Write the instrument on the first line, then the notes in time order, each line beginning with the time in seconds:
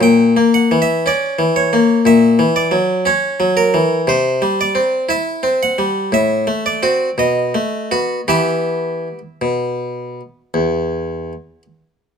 harpsichord
0.01 A#2 G5
0.37 A#3
0.54 F#5
0.71 E3
0.82 E5
1.06 C#4 D5
1.39 E3
1.56 C#5
1.73 A#3
2.05 A#2 E5
2.39 E3
2.56 D5
2.71 F#3
3.06 C#4 C#5
3.40 F#3
3.57 A#4
3.74 E3
4.07 C3 C5
4.42 G3
4.61 D5
4.75 C4
5.09 E4 E5
5.43 C4
5.63 F#5
5.78 G3
6.12 A2 E5
6.47 A3
6.66 D5
6.83 C4 F#4
7.18 B2 D#5
7.55 A3
7.91 B3 F#4
8.28 E3 B3 G4 E5
9.41 B2
10.54 E2